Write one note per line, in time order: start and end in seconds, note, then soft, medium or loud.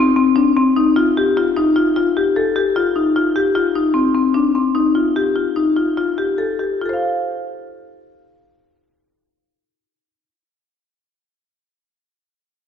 0.16 0.29 C4 medium
0.36 0.49 D4 medium
0.57 0.69 C4 medium
0.77 0.89 D#4 medium
0.96 1.09 F4 medium
1.17 1.30 G4 medium
1.37 1.49 F4 medium
1.56 1.69 D#4 medium
1.76 1.89 F4 medium
1.96 2.09 F4 medium
2.17 2.29 G4 medium
2.36 2.49 A4 medium
2.56 2.68 G4 medium
2.76 2.88 F4 medium
2.96 3.08 D#4 medium
3.16 3.28 F4 medium
3.36 3.48 G4 medium
3.55 3.68 F4 medium
3.76 3.88 D#4 medium
3.94 4.07 C4 medium
4.14 4.27 C4 medium
4.34 4.47 D4 medium
4.55 4.67 C4 soft
4.75 4.87 D#4 medium
4.95 5.08 F4 soft
5.16 5.28 G4 medium
5.36 5.48 F4 soft
5.56 5.69 D#4 medium
5.77 5.90 F4 soft
5.97 6.10 F4 medium
6.18 6.31 G4 soft
6.38 6.52 A4 medium
6.59 6.73 G4 soft
6.82 11.75 F4 soft
6.82 11.79 A4 soft
6.89 11.83 C5 soft
6.89 11.87 F5 soft